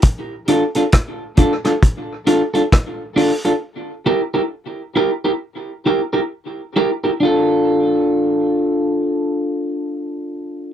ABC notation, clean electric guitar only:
X:1
M:4/4
L:1/16
Q:"Swing 16ths" 1/4=67
K:Dm
V:1 name="Clean electric guitar"
z2 [DFA] [DFA] z2 [DFA] [DFA] z2 [DFA] [DFA] z2 [DFA] [DFA] | z2 [EGB] [EGB] z2 [EGB] [EGB] z2 [EGB] [EGB] z2 [EGB] [EGB] | [DFA]16 |]